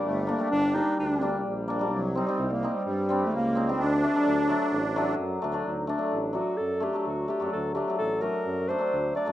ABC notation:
X:1
M:4/4
L:1/16
Q:1/4=129
K:none
V:1 name="Clarinet"
A,2 _B,2 D2 _E2 D3 z4 z | ^F,2 G,3 _B,2 G, G,3 A, B,3 C | D12 z4 | _E2 D4 ^F2 A2 G2 F2 G2 |
A2 G2 A2 _B4 c4 d2 |]
V:2 name="Hammered dulcimer"
z2 [_B,D] [G,B,D] z2 [G,B,D] z3 [G,B,D] z3 [B,D] [G,B,D] | z2 [C_E] [G,CE] z2 [G,CE] z3 [G,CD] z3 [CE] [G,CE] | z2 [A,D] [^F,A,D] z2 [F,A,D] z3 [F,A,D] z3 [A,D] [F,A,D] | z2 [A,D] [^F,A,D] z2 [F,A,D] z3 [A,D] [F,A,D] z2 [A,D] [F,A,D] |
z2 [A,D] [^F,A,D] z2 [F,A,D] z3 [A,D] [F,A,D] z2 [A,D] [F,A,D] |]
V:3 name="Accordion"
A,4 D4 D3 z4 z | ^F,2 G,3 _B,2 G, G,3 A, B,3 C | D12 z4 | z16 |
z16 |]
V:4 name="Tuba" clef=bass
G,,,4 G,,,4 D,,4 _B,,,4 | C,,4 C,,4 G,,4 ^C,,4 | D,,4 D,,4 A,,,4 ^F,,2 D,,2 | D,,4 A,,,4 ^F,,4 D,,3 F,, |
D,,4 A,,,4 ^F,,4 D,,3 F,, |]